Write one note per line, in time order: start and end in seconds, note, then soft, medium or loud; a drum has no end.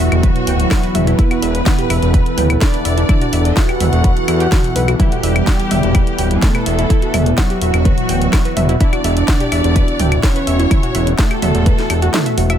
0.00 12.58 E2 medium
0.00 12.57 E3 medium
0.00 12.58 E3 medium
0.00 1.20 F#3 loud
0.00 1.70 B3 medium
0.00 12.57 B3 medium
0.00 12.57 E4 medium
0.00 12.58 E4 medium
0.00 1.19 F#4 loud
0.00 4.98 B4 medium
0.00 0.11 E5 medium
0.00 12.57 F#5 medium
0.12 0.31 E1 loud
0.12 closed hi-hat soft
0.12 claves soft
0.23 0.28 B4 medium
0.23 kick loud
0.23 closed hi-hat medium
0.23 mid tom medium
0.36 closed hi-hat soft
0.47 0.67 D1 loud
0.47 0.55 G5 medium
0.47 open hi-hat loud
0.60 closed hi-hat soft
0.71 kick loud
0.71 snare loud
0.71 closed hi-hat medium
0.71 claves medium
0.83 0.90 B4 medium
0.83 closed hi-hat soft
0.95 1.14 E1 loud
0.95 1.06 E5 medium
0.95 mid tom medium
0.95 open hi-hat loud
1.07 1.17 E4 medium
1.07 closed hi-hat soft
1.19 2.52 B3 loud
1.19 1.30 E4 loud
1.19 2.52 B4 loud
1.19 kick loud
1.19 closed hi-hat medium
1.31 1.35 F#4 medium
1.31 closed hi-hat soft
1.31 claves medium
1.42 1.62 E1 loud
1.42 1.50 E5 medium
1.42 open hi-hat loud
1.55 closed hi-hat soft
1.66 5.51 A4 medium
1.66 1.71 F#5 medium
1.66 kick loud
1.66 snare loud
1.66 closed hi-hat medium
1.66 mid tom medium
1.79 1.86 G4 medium
1.79 closed hi-hat soft
1.90 2.00 E1 loud
1.90 2.02 E5 medium
1.90 open hi-hat loud
1.90 claves medium
2.02 2.21 E1 loud
2.02 closed hi-hat soft
2.14 2.18 B4 medium
2.14 kick loud
2.14 closed hi-hat medium
2.26 closed hi-hat soft
2.38 2.57 D1 loud
2.38 2.45 G5 medium
2.38 mid tom medium
2.38 open hi-hat loud
2.50 closed hi-hat soft
2.50 claves medium
2.61 3.58 D4 loud
2.61 3.57 D5 loud
2.61 kick loud
2.61 snare loud
2.61 closed hi-hat medium
2.74 2.81 B4 medium
2.74 closed hi-hat soft
2.85 3.05 E1 loud
2.85 2.97 E5 medium
2.85 open hi-hat loud
2.98 3.08 E4 medium
2.98 closed hi-hat soft
3.09 3.21 E4 loud
3.09 kick loud
3.09 closed hi-hat medium
3.09 mid tom medium
3.09 claves medium
3.21 3.26 F#4 medium
3.21 closed hi-hat soft
3.33 3.52 E1 loud
3.33 3.41 E5 medium
3.33 open hi-hat loud
3.45 closed hi-hat soft
3.57 4.90 F#4 loud
3.57 4.90 F#5 loud
3.57 3.61 F#5 medium
3.57 kick loud
3.57 snare loud
3.57 closed hi-hat medium
3.69 3.76 G4 medium
3.69 closed hi-hat soft
3.69 claves medium
3.80 3.90 E1 medium
3.80 3.92 E5 medium
3.80 mid tom medium
3.80 open hi-hat loud
3.93 4.12 E1 loud
3.93 closed hi-hat soft
4.04 4.09 B4 medium
4.04 kick loud
4.04 closed hi-hat medium
4.17 closed hi-hat soft
4.28 4.47 E2 loud
4.28 4.33 E4 medium
4.28 open hi-hat loud
4.28 claves medium
4.40 4.48 G4 loud
4.40 closed hi-hat soft
4.52 kick loud
4.52 snare loud
4.52 closed hi-hat medium
4.52 mid tom medium
4.64 closed hi-hat soft
4.76 4.95 B1 medium
4.76 4.83 B4 loud
4.76 open hi-hat loud
4.88 4.95 F#4 medium
4.88 closed hi-hat soft
4.88 claves medium
4.99 6.44 G3 loud
4.99 5.11 E4 loud
4.99 6.42 G4 loud
4.99 12.58 E5 medium
4.99 kick loud
4.99 closed hi-hat medium
4.99 mid tom medium
5.12 5.16 F#4 medium
5.12 closed hi-hat soft
5.23 5.43 E1 loud
5.23 5.31 E5 medium
5.23 open hi-hat loud
5.36 closed hi-hat soft
5.36 claves medium
5.47 9.32 B3 medium
5.47 5.52 F#5 medium
5.47 kick loud
5.47 snare loud
5.47 closed hi-hat medium
5.60 5.67 G4 medium
5.60 closed hi-hat soft
5.71 5.81 E1 medium
5.71 5.83 E5 medium
5.71 mid tom medium
5.71 open hi-hat loud
5.83 6.02 E1 loud
5.83 closed hi-hat soft
5.95 5.99 B4 medium
5.95 kick loud
5.95 closed hi-hat medium
5.95 claves medium
6.07 closed hi-hat soft
6.19 6.38 D1 loud
6.19 6.26 G5 medium
6.19 open hi-hat loud
6.31 closed hi-hat soft
6.42 7.29 A3 medium
6.42 7.29 A4 loud
6.42 kick loud
6.42 snare loud
6.42 closed hi-hat medium
6.42 mid tom medium
6.55 6.62 B4 medium
6.55 closed hi-hat soft
6.55 claves medium
6.66 6.86 E1 loud
6.66 6.78 E5 medium
6.66 open hi-hat loud
6.79 6.89 E4 medium
6.79 closed hi-hat soft
6.90 7.02 E4 loud
6.90 kick loud
6.90 closed hi-hat medium
7.02 7.07 F#4 medium
7.02 closed hi-hat soft
7.14 7.33 E1 loud
7.14 7.22 E5 medium
7.14 mid tom medium
7.14 open hi-hat loud
7.14 claves medium
7.26 closed hi-hat soft
7.38 8.71 F#3 loud
7.38 8.71 F#4 loud
7.38 7.42 F#5 medium
7.38 kick loud
7.38 snare loud
7.38 closed hi-hat medium
7.50 7.57 G4 medium
7.50 closed hi-hat soft
7.62 7.71 E1 medium
7.62 7.73 E5 medium
7.62 open hi-hat loud
7.74 7.93 E1 loud
7.74 closed hi-hat soft
7.74 claves medium
7.85 7.90 B4 medium
7.85 kick loud
7.85 closed hi-hat medium
7.85 mid tom loud
7.98 closed hi-hat soft
8.09 8.28 D1 loud
8.09 8.17 G5 medium
8.09 open hi-hat loud
8.22 closed hi-hat soft
8.33 kick loud
8.33 snare loud
8.33 closed hi-hat medium
8.33 claves medium
8.45 8.52 B4 medium
8.45 closed hi-hat soft
8.57 8.76 E1 loud
8.57 8.68 E5 medium
8.57 mid tom loud
8.57 open hi-hat loud
8.69 8.79 E4 medium
8.69 closed hi-hat soft
8.81 10.25 D4 loud
8.81 8.92 E4 loud
8.81 10.23 D5 loud
8.81 kick loud
8.81 closed hi-hat medium
8.93 8.97 F#4 medium
8.93 closed hi-hat soft
8.93 claves medium
9.04 9.24 E1 loud
9.04 9.12 E5 medium
9.04 open hi-hat loud
9.17 closed hi-hat soft
9.28 12.58 F#4 medium
9.28 9.33 F#5 medium
9.28 kick loud
9.28 snare loud
9.28 closed hi-hat medium
9.28 mid tom loud
9.40 9.48 G4 medium
9.40 closed hi-hat soft
9.52 9.62 E1 medium
9.52 9.63 E5 medium
9.52 open hi-hat loud
9.52 claves medium
9.64 9.83 E1 loud
9.64 closed hi-hat soft
9.76 9.80 B4 medium
9.76 kick loud
9.76 closed hi-hat medium
9.88 closed hi-hat soft
10.00 10.19 D1 loud
10.00 10.07 G5 medium
10.00 mid tom loud
10.00 open hi-hat loud
10.12 closed hi-hat soft
10.12 claves medium
10.23 11.09 C#4 loud
10.23 11.09 C#5 loud
10.23 kick loud
10.23 snare loud
10.23 closed hi-hat medium
10.36 10.43 B4 medium
10.36 closed hi-hat soft
10.47 10.67 E1 loud
10.47 10.59 E5 medium
10.47 open hi-hat loud
10.59 10.70 E4 medium
10.59 closed hi-hat soft
10.71 10.82 E4 loud
10.71 kick loud
10.71 closed hi-hat medium
10.71 mid tom loud
10.71 claves medium
10.83 10.88 F#4 medium
10.83 closed hi-hat soft
10.95 11.14 E1 loud
10.95 11.02 E5 medium
10.95 open hi-hat loud
11.07 closed hi-hat soft
11.18 12.52 A3 loud
11.18 12.52 A4 loud
11.18 11.23 F#5 medium
11.18 kick loud
11.18 snare loud
11.18 closed hi-hat medium
11.31 11.38 G4 medium
11.31 closed hi-hat soft
11.31 claves medium
11.42 11.52 E1 medium
11.42 11.54 E5 medium
11.42 mid tom loud
11.42 open hi-hat loud
11.55 11.74 E1 loud
11.55 closed hi-hat soft
11.66 11.71 B4 medium
11.66 kick loud
11.66 closed hi-hat medium
11.79 snare soft
11.79 closed hi-hat soft
11.90 12.09 E1 medium
11.90 11.98 G4 medium
11.90 open hi-hat loud
11.90 claves medium
12.02 12.07 F#4 loud
12.02 closed hi-hat soft
12.14 snare loud
12.14 closed hi-hat medium
12.14 mid tom loud
12.26 12.30 E5 medium
12.26 closed hi-hat medium
12.38 12.57 E1 medium
12.38 12.45 F#4 medium
12.38 open hi-hat loud
12.50 12.57 E5 loud
12.50 closed hi-hat soft
12.50 claves medium